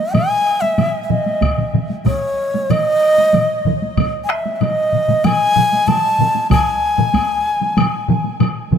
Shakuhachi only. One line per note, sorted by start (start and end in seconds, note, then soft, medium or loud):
0.00 0.15 D#5 medium
0.13 0.62 G#5 medium
0.61 1.03 E5 medium
1.03 1.11 E5 soft
1.10 1.74 D#5 medium
2.06 2.72 C#5 medium
2.71 3.66 D#5 loud
4.24 4.32 G#5 medium
4.30 4.56 E5 medium
4.56 4.63 E5 medium
4.61 5.26 D#5 medium
5.25 5.89 G#5 loud
5.87 6.51 A5 loud
6.51 8.36 G#5 medium